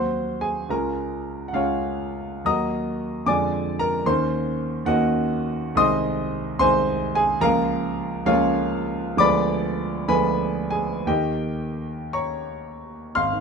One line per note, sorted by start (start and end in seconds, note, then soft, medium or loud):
0.00 0.67 D#2 soft
0.00 0.67 F#3 soft
0.00 0.67 C4 soft
0.00 0.67 F#4 soft
0.00 0.38 C5 medium
0.00 0.38 F#5 medium
0.00 0.42 C6 medium
0.41 0.68 G#4 medium
0.41 0.70 G#5 medium
0.69 1.50 C#2 medium
0.69 1.51 G#3 soft
0.69 1.51 C#4 soft
0.69 1.51 F4 soft
0.69 1.44 A#4 medium
0.69 1.47 A#5 medium
1.48 1.54 F#5 medium
1.53 2.42 C#2 medium
1.53 2.42 G#3 soft
1.53 2.42 C#4 soft
1.53 2.42 F4 medium
1.53 2.42 C#5 medium
1.53 2.45 F5 medium
2.45 3.25 D#2 medium
2.45 3.25 F#3 soft
2.45 3.25 A#3 soft
2.45 3.26 F#4 soft
2.45 3.24 D#5 medium
2.45 3.24 A#5 medium
2.45 3.28 D#6 medium
3.26 4.04 F2 medium
3.26 4.04 D3 soft
3.26 4.05 G#3 soft
3.26 4.05 F4 soft
3.26 3.77 D5 medium
3.26 3.76 G#5 medium
3.26 3.80 D6 loud
3.79 4.05 A#4 medium
3.79 4.07 A#5 loud
4.05 4.83 D#2 medium
4.05 4.84 D#3 medium
4.05 4.86 A#3 medium
4.05 4.85 C#4 medium
4.05 4.84 C5 medium
4.05 4.88 C6 medium
4.85 5.74 D#2 medium
4.85 5.74 D#3 medium
4.85 5.75 A#3 medium
4.85 5.75 C#4 medium
4.85 5.74 F#4 medium
4.85 5.74 D#5 medium
4.85 5.77 F#5 loud
5.75 6.57 C2 medium
5.75 6.57 D#3 medium
5.75 6.57 G#3 medium
5.75 6.57 C4 medium
5.75 6.57 D#5 medium
5.75 6.56 C6 medium
5.75 6.60 D#6 loud
6.59 7.41 C2 medium
6.59 7.41 D#3 medium
6.59 7.40 G#3 medium
6.59 7.42 C4 medium
6.59 7.12 C5 medium
6.59 7.12 G#5 medium
6.59 7.15 C6 loud
7.15 7.42 G#4 medium
7.15 7.44 G#5 loud
7.41 8.24 C#2 medium
7.41 8.24 F3 medium
7.41 8.25 G#3 medium
7.41 8.25 A#3 medium
7.41 8.23 A#4 medium
7.41 8.24 F5 medium
7.41 8.27 A#5 loud
8.26 9.16 C#2 medium
8.26 9.16 F3 medium
8.26 9.16 G#3 medium
8.26 9.16 A#3 medium
8.26 9.15 F4 medium
8.26 9.15 C#5 medium
8.26 9.19 F5 loud
9.17 10.06 D2 medium
9.17 10.07 F3 medium
9.17 10.07 G#3 medium
9.17 10.08 B3 medium
9.17 10.07 D5 medium
9.17 10.07 B5 medium
9.17 10.10 D6 loud
10.08 11.03 D2 medium
10.08 11.03 F3 medium
10.08 11.03 G#3 medium
10.08 11.04 B3 medium
10.08 10.69 B4 medium
10.08 10.69 G#5 medium
10.08 10.72 B5 loud
10.71 11.04 G#4 medium
10.71 11.05 G#5 medium
11.05 13.12 D#2 medium
11.05 13.13 D#3 medium
11.05 13.13 A#3 soft
11.05 12.12 G4 medium
11.05 12.12 D#5 medium
11.05 12.16 G5 medium
12.13 13.12 C#5 medium
12.13 13.12 A#5 medium
12.13 13.16 C#6 medium
13.15 13.40 G#1 medium
13.15 13.40 F5 medium
13.15 13.40 C6 medium
13.15 13.40 F6 loud
13.33 13.40 D#3 soft